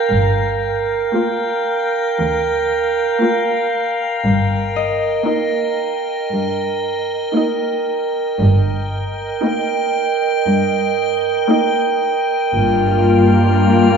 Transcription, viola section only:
1.14 1.93 A#3 soft
1.14 1.94 F4 soft
3.22 4.01 A#3 soft
3.22 4.01 F4 soft
5.27 6.07 A#3 soft
5.27 6.07 D#4 soft
7.36 8.15 A#3 soft
7.36 8.15 D#4 soft
9.42 10.21 A#3 soft
9.42 10.21 D#4 soft
11.49 12.28 A#3 soft
11.49 12.28 D#4 soft
12.54 13.97 A#3 medium
12.54 13.97 F4 medium

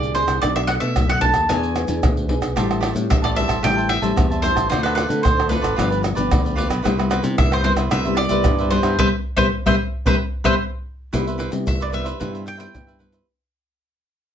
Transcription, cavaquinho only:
2.56 2.68 G4 medium
2.56 2.69 C5 medium
2.56 2.69 E5 medium
2.56 2.68 A5 medium
2.69 2.80 C5 soft
2.69 2.81 E5 soft
2.69 2.81 A5 soft
2.81 2.92 G4 medium
2.81 2.92 C5 medium
2.81 2.93 E5 medium
2.81 2.93 A5 medium
2.93 muted cavaquinho stroke soft
3.22 3.34 C5 soft
3.22 3.35 E5 soft
3.22 3.35 A5 soft
3.35 3.48 G4 soft
3.35 3.48 C5 soft
3.35 3.48 E5 medium
3.35 3.47 A5 soft
3.48 3.62 C5 medium
3.48 3.62 E5 medium
3.48 3.61 A5 medium
3.63 3.75 G4 medium
3.63 3.76 C5 medium
3.63 3.76 E5 medium
3.63 3.75 A5 medium
3.76 3.88 C5 soft
3.76 3.88 E5 soft
3.76 3.88 A5 soft
3.88 muted cavaquinho stroke soft
4.02 4.29 C5 medium
4.02 4.29 E5 medium
4.02 4.29 A5 medium
4.31 4.42 C5 soft
4.31 4.43 E5 soft
4.31 4.43 A5 soft
4.43 4.56 G4 medium
4.43 4.55 C5 medium
4.43 4.55 E5 medium
4.43 4.54 A5 medium
4.55 4.69 C5 soft
4.55 4.69 E5 soft
4.55 4.69 A5 medium
4.70 4.82 F4 medium
4.70 4.83 A4 medium
4.70 4.83 C5 medium
4.70 4.82 D5 medium
4.83 4.94 A4 soft
4.83 4.95 C5 soft
4.83 4.95 D5 medium
4.95 5.07 F4 medium
4.95 5.07 A4 medium
4.95 5.07 C5 medium
4.95 5.07 D5 medium
5.08 muted cavaquinho stroke soft
5.37 5.49 A4 soft
5.37 5.49 C5 soft
5.37 5.49 D5 soft
5.49 5.62 F4 soft
5.49 5.62 A4 medium
5.49 5.61 C5 medium
5.49 5.60 D5 medium
5.61 5.76 A4 medium
5.61 5.76 C5 medium
5.61 5.75 D5 medium
5.76 5.89 F4 medium
5.76 5.89 G4 medium
5.76 5.90 B4 medium
5.76 5.89 D5 medium
5.90 6.02 G4 soft
5.90 6.02 B4 soft
5.90 6.02 D5 medium
6.03 muted cavaquinho stroke soft
6.15 6.43 G4 medium
6.15 6.43 B4 medium
6.15 6.42 D5 medium
6.44 6.55 G4 soft
6.44 6.56 B4 medium
6.44 6.56 D5 soft
6.55 6.69 F4 medium
6.55 6.69 G4 medium
6.55 6.68 B4 medium
6.55 6.67 D5 medium
6.68 6.83 G4 soft
6.68 6.83 B4 medium
6.68 6.82 D5 medium
6.83 6.96 E4 medium
6.83 6.97 B4 medium
6.83 6.97 C5 medium
6.83 6.96 E5 medium
6.97 7.09 B4 soft
6.97 7.10 C5 soft
6.97 7.10 E5 medium
7.10 7.22 E4 medium
7.10 7.23 B4 medium
7.10 7.23 C5 medium
7.10 7.23 E5 medium
7.24 muted cavaquinho stroke soft
7.52 7.63 B4 soft
7.52 7.63 C5 soft
7.52 7.64 E5 soft
7.63 7.77 E4 medium
7.63 7.77 B4 medium
7.63 7.76 C5 medium
7.63 7.75 E5 medium
7.76 7.90 B4 medium
7.76 7.90 C5 medium
7.76 7.90 E5 medium
7.91 8.04 E4 medium
7.91 8.04 B4 medium
7.91 8.04 C5 medium
7.91 8.04 E5 medium
8.05 8.17 B4 soft
8.05 8.17 C5 soft
8.05 8.17 E5 medium
8.17 muted cavaquinho stroke soft
8.30 8.57 B4 medium
8.30 8.57 C5 medium
8.30 8.57 E5 medium
8.59 8.71 B4 soft
8.59 8.71 C5 medium
8.59 8.71 E5 soft
8.71 8.84 E4 medium
8.71 8.84 B4 medium
8.71 8.83 C5 medium
8.71 8.82 E5 medium
8.83 8.97 B4 soft
8.83 8.97 C5 medium
8.83 8.97 E5 medium
8.99 9.08 B4 medium
8.99 9.08 C5 loud
8.99 9.08 E5 medium
9.37 9.46 B4 loud
9.37 9.46 C5 medium
9.37 9.46 E5 medium
9.66 9.74 B4 medium
9.66 9.75 C5 medium
9.66 9.74 E5 medium
10.06 10.15 B4 medium
10.06 10.15 C5 loud
10.06 10.15 E5 medium
10.44 10.53 B4 loud
10.44 10.54 C5 loud
10.44 10.54 E5 medium
11.13 11.25 E4 medium
11.13 11.25 B4 medium
11.13 11.25 C5 medium
11.13 11.26 E5 medium
11.27 11.38 B4 soft
11.27 11.38 C5 soft
11.27 11.39 E5 medium
11.38 11.50 E4 medium
11.38 11.51 B4 medium
11.38 11.51 C5 medium
11.38 11.51 E5 medium
11.51 muted cavaquinho stroke soft
11.80 11.91 B4 soft
11.80 11.91 C5 soft
11.80 11.92 E5 soft
11.91 12.04 E4 soft
11.91 12.05 B4 soft
11.91 12.04 C5 medium
11.91 12.03 E5 soft
12.04 12.19 B4 medium
12.04 12.18 C5 medium
12.04 12.18 E5 medium
12.19 12.32 E4 medium
12.19 12.32 B4 medium
12.19 12.32 C5 medium
12.19 12.32 E5 medium
12.33 12.44 B4 soft
12.33 12.45 C5 soft
12.33 12.45 E5 soft
12.46 muted cavaquinho stroke soft
12.57 12.85 B4 medium
12.57 12.85 C5 medium
12.57 12.84 E5 medium
12.87 12.98 B4 soft
12.87 12.99 C5 soft
12.87 12.99 E5 soft
12.99 13.12 E4 medium
12.99 13.12 B4 medium
12.99 13.12 C5 medium
12.99 13.11 E5 medium
13.13 13.26 B4 soft
13.13 13.26 C5 soft
13.13 13.25 E5 soft

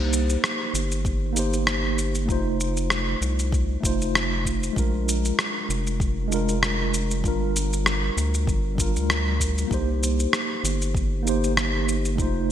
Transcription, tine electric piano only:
0.00 1.31 A#3 medium
0.00 1.32 D#4 medium
0.00 1.33 G4 medium
0.00 1.34 C5 medium
1.33 2.24 A#3 medium
1.33 2.25 D#4 medium
1.37 2.26 G4 medium
1.37 2.27 C5 medium
2.26 3.78 A3 medium
2.26 3.80 D#4 medium
2.30 3.81 F4 medium
2.30 3.82 C5 medium
3.80 4.71 A3 medium
3.80 4.72 D#4 medium
3.84 4.73 F4 medium
3.84 4.74 C5 medium
4.73 6.26 G#3 medium
4.73 6.27 D4 medium
4.77 6.28 F4 medium
4.77 6.29 A#4 loud
6.28 7.19 G#3 medium
6.28 7.20 D4 medium
6.32 7.21 F4 medium
6.32 7.22 A#4 medium
7.21 8.74 G3 medium
7.21 8.75 D4 medium
7.26 8.76 F4 medium
7.26 8.77 A#4 medium
8.75 9.66 G3 medium
8.75 9.67 D4 medium
8.79 9.68 F4 medium
8.79 9.69 A#4 medium
9.67 11.21 A#3 medium
9.67 11.22 D#4 medium
9.72 11.23 G4 medium
9.72 11.24 C5 medium
11.23 12.14 A#3 medium
11.23 12.15 D#4 medium
11.27 12.16 G4 medium
11.27 12.17 C5 medium
12.16 12.52 A3 medium
12.16 12.52 D#4 medium
12.20 12.52 F4 medium
12.20 12.52 C5 medium

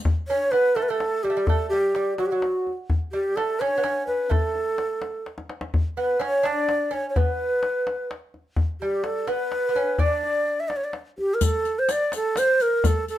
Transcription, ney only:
0.28 0.53 C#5 medium
0.51 0.77 B4 medium
0.75 0.84 A4 medium
0.83 0.91 B4 medium
0.89 1.25 A4 medium
1.23 1.48 G4 medium
1.47 1.69 A4 medium
1.69 2.14 G4 medium
2.19 2.27 F#4 medium
2.26 2.33 G4 medium
2.31 2.71 F#4 medium
3.12 3.38 G4 medium
3.36 3.62 A4 medium
3.60 4.06 C#5 medium
4.07 4.32 B4 medium
4.31 5.26 A4 medium
5.98 6.23 B4 medium
6.21 6.48 C#5 medium
6.46 6.95 D5 medium
6.93 7.09 C#5 medium
7.09 7.19 C#5 medium
7.17 8.11 B4 medium
8.81 9.06 G4 medium
9.04 9.30 A4 medium
9.28 10.01 B4 medium
10.00 10.61 D5 medium
10.60 10.70 E5 medium
10.68 10.78 D5 medium
10.76 10.86 C#5 medium
10.84 10.94 D5 medium
11.18 11.36 G4 medium
11.34 11.44 A#4 medium
11.43 11.80 A4 medium
11.79 11.93 C5 medium
11.91 12.14 D5 loud
12.16 12.40 A4 medium
12.38 12.63 C5 loud
12.62 12.88 A#4 medium
12.86 13.08 A4 medium
13.09 13.18 A4 medium

